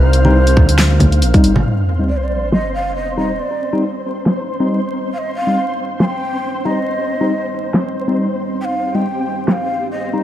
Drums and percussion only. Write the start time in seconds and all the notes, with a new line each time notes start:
0.13 closed hi-hat
0.25 muted conga
0.47 closed hi-hat
0.57 kick, low conga
0.69 closed hi-hat
0.79 snare, closed hi-hat
1.00 kick, closed hi-hat, high conga, low conga
1.12 closed hi-hat
1.22 closed hi-hat
1.34 kick, closed hi-hat, muted conga
1.44 closed hi-hat
1.56 high conga, low conga
2.52 snare
4.26 snare
6.00 snare
7.74 snare
9.48 snare